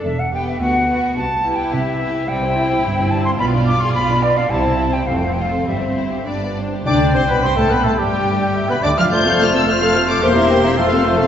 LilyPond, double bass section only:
\new Staff \with { instrumentName = "Double bass section" } { \clef bass \time 2/4 \key c \lydian \tempo 4 = 107 e,,4 d,4 | c,4 c,4 | \key c \major c,4 g,,4 | b,,4 b,,4 |
c,4 f,,4 | g,,4 g,,4 | d,8 c,16 r16 c,16 r16 b,,16 r16 | g,,4~ g,,16 r16 d,16 r16 |
f,,2 | e,,4 f,,4 | }